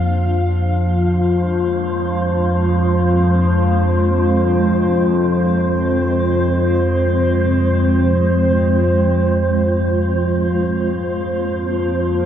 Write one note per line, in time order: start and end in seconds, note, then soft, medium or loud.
0.00 12.26 F2 medium
0.00 12.26 F3 medium
0.00 3.88 A#3 medium
0.00 4.45 D4 medium
0.00 12.26 F4 medium
0.00 12.26 C5 medium
0.00 1.00 F5 medium
0.97 10.77 G#3 medium
0.97 12.26 C5 medium
1.74 12.26 C4 medium
10.75 12.26 A#3 medium